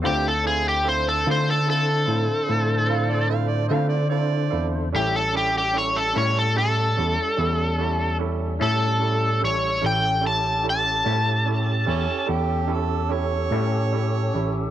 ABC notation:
X:1
M:12/8
L:1/16
Q:3/8=49
K:Aphr
V:1 name="Harmonica"
z12 z2 f d f d f d d3 z | z24 | z8 z2 ^C2 G2 A2 ^c8 |]
V:2 name="Electric slide guitar"
G A ^G =G c A c A A8 z8 | G A G G ^c A c A A8 z2 A4 c2 | g2 a2 a8 z12 |]
V:3 name="Upright piano"
[CEFA]2 [CEFA]2 [CEFA]2 [CEFA]2 [CEFA]2 [CEFA]2 [CEFA]2 [CEFA]2 [CEFA]2 [CEFA]2 [CEFA]2 [CEFA]2 | [^CEGA]2 [CEGA]2 [CEGA]2 [CEGA]2 [CEGA]2 [CEGA]2 [CEGA]2 [CEGA]2 [CEGA]2 [CEGA]2 [CEGA]2 [CEGA]2 | [^CEGA]2 [CEGA]2 [CEGA]2 [CEGA]2 [CEGA]2 [CEGA]2 [CEGA]2 [CEGA]2 [CEGA]2 [CEGA]2 [CEGA]2 [CEGA]2 |]
V:4 name="Tonewheel organ"
[D,Dc]24 | [G,^CA]24 | [^CGA]24 |]
V:5 name="Clean electric guitar"
[D,A,CF]2 z4 [D,A,CF]2 z8 z2 [D,A,CF]2 z4 | [A,,G,^CE]2 z4 [A,,G,CE]2 z8 z2 [A,,G,CE]2 z4 | z6 [A,,G,^CE]2 z8 z2 [A,,G,CE]2 z4 |]
V:6 name="Tine electric piano" clef=bass
D,,6 D,4 A,, z A,,6 D,4 E,,2 | A,,,6 A,,4 E,, z E,,6 A,,4 A,,,2 | A,,,6 A,,4 E,, z E,,6 A,,4 A,,,2 |]